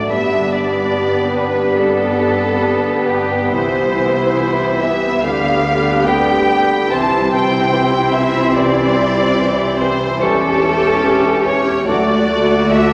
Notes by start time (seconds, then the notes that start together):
Already playing: A2 A3 D4 A4 D5 F#5
0.09 G1 G2 G3 B3 D4 G4 E5 B5
0.39 D3
0.52 G3 G4 D5 B5
0.95 G3 G4 B4 B5
1.22 G5
1.35 G3 G4 B4 B5
1.50 D5
1.78 G2 G3 G4 A4 B5
2.06 D3
2.20 G3 G4 B5
2.34 D4
2.62 G3 G4 B4 B5
2.91 G5
3.07 G3 G4 B5
3.23 D5
3.52 C2 C3 E3 E4 G4 C5 B5
3.82 G3
3.94 E3 G4 B5
4.37 E3 G4 B5
4.66 G5
4.79 E3 G4 E5 B5
5.21 D2 D3 G3 B3 G4 F5 B5
5.51 B3
5.63 D3 G4 B5
5.80 D4
6.06 D3 G4 B4 G5 B5
6.36 G5
6.48 D3 G4 B5
6.64 D5
6.90 C2 C3 E3 C4 E4 G4 A5 C6
7.20 G3
7.32 E3 G4 G5 C6
7.47 E4
7.73 E3 G4 C6
8.01 G5
8.13 E3 G4 E5 C6
8.29 E5
8.54 C3 E3 G4 D5 C6
8.85 G3
8.98 E3 G4 C6
9.12 E4
9.39 E3 G4 C5 C6
9.67 G5
9.80 E3 G4 C5 C6
9.94 E5
10.21 E1 E2 E3 G3 C#4 G4 A4 C#6
10.49 E4
10.62 E3 G4 C#6
10.76 C#4
11.02 E3 G4 C#6
11.31 G5
11.45 E3 G4 C#5 C#6
11.86 D2 D3 F#3 A3 D4 F#4 D5 D6
12.15 A3
12.29 A3 F#4 D6
12.43 D4
12.71 A3 F#4 A4 E5 D6